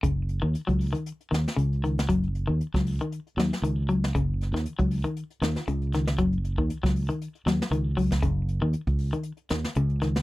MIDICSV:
0, 0, Header, 1, 4, 480
1, 0, Start_track
1, 0, Tempo, 512383
1, 35, Time_signature, 4, 2, 24, 8
1, 9575, End_track
2, 0, Start_track
2, 0, Title_t, "Clean electric guitar"
2, 0, Program_c, 0, 27
2, 29, Note_on_c, 0, 49, 85
2, 198, Note_off_c, 0, 49, 0
2, 392, Note_on_c, 0, 51, 65
2, 564, Note_off_c, 0, 51, 0
2, 630, Note_on_c, 0, 54, 57
2, 802, Note_off_c, 0, 54, 0
2, 869, Note_on_c, 0, 51, 59
2, 1042, Note_off_c, 0, 51, 0
2, 1228, Note_on_c, 0, 51, 64
2, 1400, Note_off_c, 0, 51, 0
2, 1467, Note_on_c, 0, 49, 68
2, 1639, Note_off_c, 0, 49, 0
2, 1724, Note_on_c, 0, 51, 65
2, 1891, Note_off_c, 0, 51, 0
2, 1957, Note_on_c, 0, 54, 84
2, 2126, Note_off_c, 0, 54, 0
2, 2319, Note_on_c, 0, 51, 69
2, 2490, Note_off_c, 0, 51, 0
2, 2573, Note_on_c, 0, 54, 57
2, 2740, Note_off_c, 0, 54, 0
2, 2821, Note_on_c, 0, 51, 64
2, 2985, Note_off_c, 0, 51, 0
2, 3165, Note_on_c, 0, 54, 69
2, 3333, Note_off_c, 0, 54, 0
2, 3405, Note_on_c, 0, 51, 70
2, 3573, Note_off_c, 0, 51, 0
2, 3642, Note_on_c, 0, 54, 68
2, 3811, Note_off_c, 0, 54, 0
2, 3887, Note_on_c, 0, 49, 87
2, 4054, Note_off_c, 0, 49, 0
2, 4255, Note_on_c, 0, 51, 65
2, 4422, Note_off_c, 0, 51, 0
2, 4486, Note_on_c, 0, 54, 61
2, 4656, Note_off_c, 0, 54, 0
2, 4725, Note_on_c, 0, 51, 64
2, 4895, Note_off_c, 0, 51, 0
2, 5081, Note_on_c, 0, 51, 72
2, 5250, Note_off_c, 0, 51, 0
2, 5320, Note_on_c, 0, 49, 76
2, 5489, Note_off_c, 0, 49, 0
2, 5570, Note_on_c, 0, 51, 70
2, 5736, Note_off_c, 0, 51, 0
2, 5794, Note_on_c, 0, 54, 88
2, 5965, Note_off_c, 0, 54, 0
2, 6167, Note_on_c, 0, 51, 64
2, 6335, Note_off_c, 0, 51, 0
2, 6401, Note_on_c, 0, 54, 61
2, 6572, Note_off_c, 0, 54, 0
2, 6641, Note_on_c, 0, 51, 64
2, 6811, Note_off_c, 0, 51, 0
2, 6995, Note_on_c, 0, 54, 73
2, 7165, Note_off_c, 0, 54, 0
2, 7227, Note_on_c, 0, 51, 77
2, 7399, Note_off_c, 0, 51, 0
2, 7465, Note_on_c, 0, 54, 70
2, 7638, Note_off_c, 0, 54, 0
2, 7704, Note_on_c, 0, 49, 88
2, 7877, Note_off_c, 0, 49, 0
2, 8074, Note_on_c, 0, 51, 69
2, 8245, Note_off_c, 0, 51, 0
2, 8554, Note_on_c, 0, 51, 62
2, 8724, Note_off_c, 0, 51, 0
2, 8908, Note_on_c, 0, 51, 78
2, 9078, Note_off_c, 0, 51, 0
2, 9150, Note_on_c, 0, 49, 79
2, 9318, Note_off_c, 0, 49, 0
2, 9385, Note_on_c, 0, 51, 73
2, 9554, Note_off_c, 0, 51, 0
2, 9575, End_track
3, 0, Start_track
3, 0, Title_t, "Fingered electric bass"
3, 0, Program_c, 1, 33
3, 32, Note_on_c, 1, 30, 81
3, 382, Note_off_c, 1, 30, 0
3, 400, Note_on_c, 1, 39, 78
3, 509, Note_off_c, 1, 39, 0
3, 644, Note_on_c, 1, 37, 81
3, 872, Note_off_c, 1, 37, 0
3, 1235, Note_on_c, 1, 39, 72
3, 1358, Note_off_c, 1, 39, 0
3, 1475, Note_on_c, 1, 37, 87
3, 1933, Note_off_c, 1, 37, 0
3, 1961, Note_on_c, 1, 30, 83
3, 2310, Note_off_c, 1, 30, 0
3, 2332, Note_on_c, 1, 39, 74
3, 2439, Note_off_c, 1, 39, 0
3, 2567, Note_on_c, 1, 37, 79
3, 2797, Note_off_c, 1, 37, 0
3, 3157, Note_on_c, 1, 39, 72
3, 3282, Note_off_c, 1, 39, 0
3, 3394, Note_on_c, 1, 37, 93
3, 3855, Note_off_c, 1, 37, 0
3, 3887, Note_on_c, 1, 30, 84
3, 4235, Note_off_c, 1, 30, 0
3, 4240, Note_on_c, 1, 39, 82
3, 4355, Note_off_c, 1, 39, 0
3, 4490, Note_on_c, 1, 37, 84
3, 4719, Note_off_c, 1, 37, 0
3, 5073, Note_on_c, 1, 39, 81
3, 5200, Note_off_c, 1, 39, 0
3, 5317, Note_on_c, 1, 37, 89
3, 5776, Note_off_c, 1, 37, 0
3, 5797, Note_on_c, 1, 30, 82
3, 6148, Note_off_c, 1, 30, 0
3, 6164, Note_on_c, 1, 39, 79
3, 6276, Note_off_c, 1, 39, 0
3, 6405, Note_on_c, 1, 37, 83
3, 6636, Note_off_c, 1, 37, 0
3, 6989, Note_on_c, 1, 39, 75
3, 7116, Note_off_c, 1, 39, 0
3, 7220, Note_on_c, 1, 37, 88
3, 7684, Note_off_c, 1, 37, 0
3, 7709, Note_on_c, 1, 30, 90
3, 8061, Note_off_c, 1, 30, 0
3, 8069, Note_on_c, 1, 39, 79
3, 8185, Note_off_c, 1, 39, 0
3, 8312, Note_on_c, 1, 37, 83
3, 8545, Note_off_c, 1, 37, 0
3, 8907, Note_on_c, 1, 39, 79
3, 9032, Note_off_c, 1, 39, 0
3, 9144, Note_on_c, 1, 37, 94
3, 9575, Note_off_c, 1, 37, 0
3, 9575, End_track
4, 0, Start_track
4, 0, Title_t, "Drums"
4, 31, Note_on_c, 9, 36, 77
4, 35, Note_on_c, 9, 42, 59
4, 125, Note_off_c, 9, 36, 0
4, 129, Note_off_c, 9, 42, 0
4, 270, Note_on_c, 9, 42, 46
4, 363, Note_off_c, 9, 42, 0
4, 513, Note_on_c, 9, 42, 58
4, 607, Note_off_c, 9, 42, 0
4, 642, Note_on_c, 9, 36, 63
4, 648, Note_on_c, 9, 42, 29
4, 735, Note_off_c, 9, 36, 0
4, 741, Note_off_c, 9, 42, 0
4, 756, Note_on_c, 9, 46, 55
4, 849, Note_off_c, 9, 46, 0
4, 886, Note_on_c, 9, 42, 31
4, 980, Note_off_c, 9, 42, 0
4, 995, Note_on_c, 9, 42, 66
4, 1089, Note_off_c, 9, 42, 0
4, 1129, Note_on_c, 9, 42, 32
4, 1223, Note_off_c, 9, 42, 0
4, 1246, Note_on_c, 9, 42, 49
4, 1257, Note_on_c, 9, 38, 63
4, 1339, Note_off_c, 9, 42, 0
4, 1351, Note_off_c, 9, 38, 0
4, 1372, Note_on_c, 9, 42, 30
4, 1384, Note_on_c, 9, 38, 59
4, 1466, Note_off_c, 9, 42, 0
4, 1477, Note_off_c, 9, 38, 0
4, 1483, Note_on_c, 9, 42, 69
4, 1577, Note_off_c, 9, 42, 0
4, 1616, Note_on_c, 9, 42, 28
4, 1710, Note_off_c, 9, 42, 0
4, 1729, Note_on_c, 9, 42, 49
4, 1822, Note_off_c, 9, 42, 0
4, 1852, Note_on_c, 9, 42, 28
4, 1863, Note_on_c, 9, 38, 59
4, 1946, Note_off_c, 9, 42, 0
4, 1957, Note_off_c, 9, 38, 0
4, 1961, Note_on_c, 9, 36, 79
4, 1961, Note_on_c, 9, 42, 63
4, 2055, Note_off_c, 9, 36, 0
4, 2055, Note_off_c, 9, 42, 0
4, 2092, Note_on_c, 9, 42, 30
4, 2185, Note_off_c, 9, 42, 0
4, 2200, Note_on_c, 9, 42, 42
4, 2294, Note_off_c, 9, 42, 0
4, 2444, Note_on_c, 9, 42, 56
4, 2537, Note_off_c, 9, 42, 0
4, 2569, Note_on_c, 9, 36, 65
4, 2577, Note_on_c, 9, 38, 25
4, 2663, Note_off_c, 9, 36, 0
4, 2671, Note_off_c, 9, 38, 0
4, 2684, Note_on_c, 9, 46, 56
4, 2778, Note_off_c, 9, 46, 0
4, 2815, Note_on_c, 9, 42, 28
4, 2909, Note_off_c, 9, 42, 0
4, 2924, Note_on_c, 9, 42, 58
4, 3018, Note_off_c, 9, 42, 0
4, 3060, Note_on_c, 9, 42, 27
4, 3154, Note_off_c, 9, 42, 0
4, 3168, Note_on_c, 9, 42, 42
4, 3180, Note_on_c, 9, 38, 62
4, 3262, Note_off_c, 9, 42, 0
4, 3273, Note_off_c, 9, 38, 0
4, 3296, Note_on_c, 9, 42, 26
4, 3307, Note_on_c, 9, 38, 60
4, 3390, Note_off_c, 9, 42, 0
4, 3401, Note_off_c, 9, 38, 0
4, 3411, Note_on_c, 9, 42, 68
4, 3505, Note_off_c, 9, 42, 0
4, 3649, Note_on_c, 9, 42, 45
4, 3743, Note_off_c, 9, 42, 0
4, 3784, Note_on_c, 9, 38, 61
4, 3878, Note_off_c, 9, 38, 0
4, 3890, Note_on_c, 9, 36, 73
4, 3891, Note_on_c, 9, 42, 55
4, 3984, Note_off_c, 9, 36, 0
4, 3985, Note_off_c, 9, 42, 0
4, 4132, Note_on_c, 9, 42, 46
4, 4143, Note_on_c, 9, 38, 22
4, 4226, Note_off_c, 9, 42, 0
4, 4237, Note_off_c, 9, 38, 0
4, 4267, Note_on_c, 9, 38, 24
4, 4361, Note_off_c, 9, 38, 0
4, 4361, Note_on_c, 9, 42, 57
4, 4454, Note_off_c, 9, 42, 0
4, 4485, Note_on_c, 9, 42, 30
4, 4491, Note_on_c, 9, 36, 68
4, 4579, Note_off_c, 9, 42, 0
4, 4585, Note_off_c, 9, 36, 0
4, 4601, Note_on_c, 9, 46, 56
4, 4695, Note_off_c, 9, 46, 0
4, 4723, Note_on_c, 9, 42, 32
4, 4817, Note_off_c, 9, 42, 0
4, 4839, Note_on_c, 9, 42, 65
4, 4933, Note_off_c, 9, 42, 0
4, 4969, Note_on_c, 9, 42, 34
4, 5063, Note_off_c, 9, 42, 0
4, 5079, Note_on_c, 9, 42, 50
4, 5090, Note_on_c, 9, 38, 68
4, 5172, Note_off_c, 9, 42, 0
4, 5184, Note_off_c, 9, 38, 0
4, 5198, Note_on_c, 9, 42, 29
4, 5209, Note_on_c, 9, 38, 58
4, 5292, Note_off_c, 9, 42, 0
4, 5303, Note_off_c, 9, 38, 0
4, 5318, Note_on_c, 9, 42, 69
4, 5412, Note_off_c, 9, 42, 0
4, 5447, Note_on_c, 9, 42, 28
4, 5541, Note_off_c, 9, 42, 0
4, 5555, Note_on_c, 9, 42, 49
4, 5566, Note_on_c, 9, 38, 26
4, 5648, Note_off_c, 9, 42, 0
4, 5660, Note_off_c, 9, 38, 0
4, 5679, Note_on_c, 9, 42, 29
4, 5690, Note_on_c, 9, 38, 66
4, 5773, Note_off_c, 9, 42, 0
4, 5784, Note_off_c, 9, 38, 0
4, 5788, Note_on_c, 9, 42, 63
4, 5797, Note_on_c, 9, 36, 81
4, 5882, Note_off_c, 9, 42, 0
4, 5891, Note_off_c, 9, 36, 0
4, 5925, Note_on_c, 9, 42, 30
4, 6019, Note_off_c, 9, 42, 0
4, 6039, Note_on_c, 9, 42, 49
4, 6132, Note_off_c, 9, 42, 0
4, 6164, Note_on_c, 9, 36, 56
4, 6258, Note_off_c, 9, 36, 0
4, 6275, Note_on_c, 9, 42, 66
4, 6369, Note_off_c, 9, 42, 0
4, 6404, Note_on_c, 9, 36, 68
4, 6418, Note_on_c, 9, 38, 24
4, 6498, Note_off_c, 9, 36, 0
4, 6512, Note_off_c, 9, 38, 0
4, 6519, Note_on_c, 9, 46, 59
4, 6613, Note_off_c, 9, 46, 0
4, 6647, Note_on_c, 9, 42, 29
4, 6741, Note_off_c, 9, 42, 0
4, 6760, Note_on_c, 9, 42, 64
4, 6854, Note_off_c, 9, 42, 0
4, 6887, Note_on_c, 9, 42, 32
4, 6980, Note_off_c, 9, 42, 0
4, 6992, Note_on_c, 9, 42, 42
4, 7004, Note_on_c, 9, 38, 63
4, 7086, Note_off_c, 9, 42, 0
4, 7097, Note_off_c, 9, 38, 0
4, 7126, Note_on_c, 9, 42, 28
4, 7137, Note_on_c, 9, 38, 64
4, 7219, Note_off_c, 9, 42, 0
4, 7231, Note_off_c, 9, 38, 0
4, 7239, Note_on_c, 9, 42, 67
4, 7333, Note_off_c, 9, 42, 0
4, 7472, Note_on_c, 9, 36, 60
4, 7476, Note_on_c, 9, 46, 51
4, 7566, Note_off_c, 9, 36, 0
4, 7570, Note_off_c, 9, 46, 0
4, 7596, Note_on_c, 9, 36, 56
4, 7605, Note_on_c, 9, 38, 67
4, 7689, Note_off_c, 9, 36, 0
4, 7699, Note_off_c, 9, 38, 0
4, 7708, Note_on_c, 9, 36, 79
4, 7708, Note_on_c, 9, 42, 57
4, 7802, Note_off_c, 9, 36, 0
4, 7802, Note_off_c, 9, 42, 0
4, 7948, Note_on_c, 9, 42, 45
4, 8042, Note_off_c, 9, 42, 0
4, 8179, Note_on_c, 9, 42, 60
4, 8272, Note_off_c, 9, 42, 0
4, 8309, Note_on_c, 9, 42, 30
4, 8311, Note_on_c, 9, 36, 67
4, 8403, Note_off_c, 9, 42, 0
4, 8404, Note_off_c, 9, 36, 0
4, 8417, Note_on_c, 9, 46, 55
4, 8511, Note_off_c, 9, 46, 0
4, 8549, Note_on_c, 9, 42, 31
4, 8643, Note_off_c, 9, 42, 0
4, 8649, Note_on_c, 9, 42, 71
4, 8743, Note_off_c, 9, 42, 0
4, 8777, Note_on_c, 9, 42, 31
4, 8871, Note_off_c, 9, 42, 0
4, 8892, Note_on_c, 9, 42, 47
4, 8904, Note_on_c, 9, 38, 64
4, 8986, Note_off_c, 9, 42, 0
4, 8997, Note_off_c, 9, 38, 0
4, 9023, Note_on_c, 9, 42, 29
4, 9034, Note_on_c, 9, 38, 62
4, 9117, Note_off_c, 9, 42, 0
4, 9128, Note_off_c, 9, 38, 0
4, 9135, Note_on_c, 9, 42, 72
4, 9229, Note_off_c, 9, 42, 0
4, 9269, Note_on_c, 9, 42, 34
4, 9362, Note_off_c, 9, 42, 0
4, 9381, Note_on_c, 9, 42, 49
4, 9392, Note_on_c, 9, 38, 26
4, 9475, Note_off_c, 9, 42, 0
4, 9486, Note_off_c, 9, 38, 0
4, 9506, Note_on_c, 9, 42, 31
4, 9517, Note_on_c, 9, 38, 62
4, 9575, Note_off_c, 9, 38, 0
4, 9575, Note_off_c, 9, 42, 0
4, 9575, End_track
0, 0, End_of_file